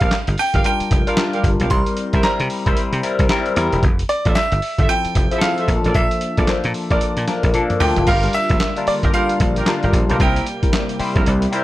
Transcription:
Already playing: F5
0.00 A#1 G4 A#4 F5, kick, closed hi-hat
0.11 snare, clap, closed hi-hat
0.27 G1, closed hi-hat
0.38 G5, open hi-hat
0.54 G1 G4 A#4 F5, kick, closed hi-hat
0.64 G3 D4 F4 A#4 G5, closed hi-hat
0.80 muted slap bass stroke, closed hi-hat
0.91 F1, kick, closed hi-hat
1.07 G3 D4 F4 G4 A#4 F5, closed hi-hat
1.17 snare, clap, closed hi-hat
1.33 G4 A#4 F5, closed hi-hat
1.44 G1, kick, closed hi-hat
1.60 B1 G4 A#4 F5, closed hi-hat
1.70 C2 G3 C4 E4 A#4 C6, kick, closed hi-hat
1.86 closed hi-hat
1.97 closed hi-hat
2.13 C2 G3 C4 E4 A#4 C5 E5, kick, closed hi-hat
2.23 G3 C4 E4 C5 A#5, snare, clap, closed hi-hat
2.40 C3, closed hi-hat
2.50 open hi-hat
2.66 C2 G3 C4 E4 A#4 C5 E5, kick, closed hi-hat
2.77 closed hi-hat
2.93 C3, closed hi-hat
3.03 G3 C4 E4 A#4, closed hi-hat
3.19 C2, kick, closed hi-hat
3.29 G3 C4 E4 A#4, snare, clap, closed hi-hat
3.46 closed hi-hat
3.56 E2 G3 C4 E4 A#4, closed hi-hat
3.72 E1, closed hi-hat
3.83 F1, kick, closed hi-hat
3.99 closed hi-hat
4.09 D5, closed hi-hat
4.25 A1 F4 A4 E5, kick, closed hi-hat
4.35 E5, muted slap bass stroke, snare, clap, closed hi-hat
4.52 G1, closed hi-hat
4.62 open hi-hat
4.78 G1 F4 A4 E5, kick, closed hi-hat
4.89 F3 C4 E4 A4 G5, closed hi-hat
5.05 muted slap bass stroke, closed hi-hat
5.15 F1, kick, closed hi-hat
5.31 F3 C4 E4 F4 G#4 A4 E5, closed hi-hat
5.38 A4 F5, snare, clap, closed hi-hat
5.58 F4 A4 E5, closed hi-hat
5.68 A#1 F3 A#3 D4 A4, kick, closed hi-hat
5.84 A1 A4 A#4 D5, closed hi-hat
5.94 A#1 E5, kick, closed hi-hat
6.11 closed hi-hat
6.21 closed hi-hat
6.37 A#1 F3 A#3 D4 A4 A#4 D5, kick, closed hi-hat
6.47 F3 A#3 D4 C5, muted slap bass stroke, snare, clap, closed hi-hat
6.64 A#2, closed hi-hat
6.74 open hi-hat
6.90 A#1 F3 A#3 D4 A4 A#4 D5, kick, closed hi-hat
7.01 muted slap bass stroke, closed hi-hat
7.17 A#2, closed hi-hat
7.27 F3 A#3 D4 A#4, snare, closed hi-hat
7.43 A#1, kick, closed hi-hat
7.54 F3 A#3 D4 A4, closed hi-hat, high tom
7.70 closed hi-hat, mid tom
7.80 D2 F3 A#3 D4 F4 G5, mid tom, open hi-hat
7.96 F#1, closed hi-hat, floor tom
8.07 G1 D3 G3 A#3 F4 G4 A#4 F5, kick, closed hi-hat, crash
8.23 G3 D4 F4 A#4, closed hi-hat
8.33 E5, closed hi-hat
8.49 A#1, kick, closed hi-hat
8.60 snare, clap, closed hi-hat
8.76 G3 D4 F4 A#4, closed hi-hat
8.87 D5, muted slap bass stroke, open hi-hat
9.03 G1 F4 G4 A#4, kick, closed hi-hat
9.13 G3 D4 F4 G4 A#4 F5, closed hi-hat
9.29 closed hi-hat
9.40 A#1, kick, closed hi-hat
9.56 F4 G4 A#4, closed hi-hat
9.66 G3 D4 F4 A#4, snare, clap, closed hi-hat
9.82 G1 F4 G4 A#4, closed hi-hat
9.93 A#1, kick, closed hi-hat
10.09 B1 G3 D4 F4 G4 A#4 C5, closed hi-hat
10.19 C2 C3 C4 E4 G4 A#4 G5, kick, closed hi-hat
10.36 closed hi-hat
10.46 closed hi-hat
10.62 G3 C4 E4 A#4, muted slap bass stroke, kick, closed hi-hat
10.73 snare, clap, closed hi-hat
10.89 closed hi-hat
10.99 G3 C4 E4 C5, muted slap bass stroke, open hi-hat
11.15 A#1 C4 E4 A#4, kick, closed hi-hat
11.26 C2, closed hi-hat
11.42 closed hi-hat
11.52 G3 C4 E4 A#4 C5, closed hi-hat

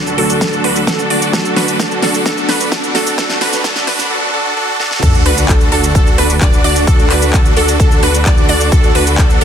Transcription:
Already playing: D2 D3 F#3 A3 D4 F#4 A4, riser
0.07 shaker
0.17 F#3 A3 D4 F#4 A4, open hi-hat
0.30 shaker
0.41 D4 F#4 A4, kick, snare, shaker
0.53 shaker
0.64 D4 F#4 B4, open hi-hat
0.76 shaker
0.87 D4 F#4 A4, kick, snare, shaker
0.99 shaker
1.10 D4 F#4 D5, open hi-hat
1.22 shaker
1.32 F#3 A3 D4 F#4 A4, kick, snare, shaker
1.45 shaker
1.56 D4 F#4 B4, snare, open hi-hat
1.68 shaker
1.79 D4 F#4 A4, kick, snare, shaker
1.91 shaker
2.01 F#3 A3 D4 F#4 A4, snare, open hi-hat
2.14 shaker
2.24 F#3 A3 D4 F#4 A4, kick, snare, shaker
2.38 shaker
2.49 D4 F#4 B4, snare, open hi-hat
2.61 shaker
2.72 D4 F#4 A4, kick, snare, shaker
2.84 shaker
2.94 F#3 A3 D4 F#4 A4, snare, open hi-hat
3.07 shaker
3.17 F#3 A3 D4 F#4 A4, kick, snare, shaker
3.30 snare, shaker
3.41 D4 F#4 B4, snare, open hi-hat
3.53 snare, shaker
3.63 F#3 A3 D4 F#4 A4, kick, snare, shaker
3.76 snare, shaker
3.87 D4 F#4 B4, snare, open hi-hat
3.99 snare, shaker
4.10 D4 F#4 A4
4.33 D4 F#4 A4
4.57 D4 F#4 A4
4.80 D4 F#4 A4, snare
4.91 snare
5.03 D2 D3 D4 F#4 A4, kick, crash, sub drop, shaker
5.14 shaker
5.26 D2 D4 F#4 B4, open hi-hat
5.38 shaker
5.49 D2 D4 F#4 A4, kick, clap, shaker
5.61 shaker
5.72 D2 D4 F#4 A4, open hi-hat
5.84 shaker
5.95 D2 F#4 A4, kick, shaker
6.07 shaker
6.18 D2 D4 F#4 B4, open hi-hat
6.30 shaker
6.41 D4 F#4 D5, kick, clap, shaker
6.53 shaker
6.64 D2 D4 F#4 D5, open hi-hat
6.76 shaker
6.87 D2 D4 F#4 A4, kick, shaker
6.99 shaker
7.10 D2 D4 F#4 B4, clap, open hi-hat
7.22 shaker
7.33 D2 D4 F#4 A4, kick, clap, shaker
7.45 shaker
7.57 D2 D4 F#4 A4, open hi-hat
7.68 shaker
7.80 D2 A4, kick, shaker
7.91 shaker
8.03 D2 D4 F#4 B4, open hi-hat
8.14 shaker
8.26 D2 D4 F#4 D5, kick, clap, shaker
8.38 shaker
8.49 D2 D4 F#4 D5, open hi-hat
8.61 shaker
8.72 D4 F#4 A4, kick, shaker
8.84 shaker
8.95 D2 D4 F#4 B4, open hi-hat
9.07 shaker
9.18 D4 F#4 A4, kick, clap, shaker
9.30 shaker
9.41 D4 F#4 A4, open hi-hat

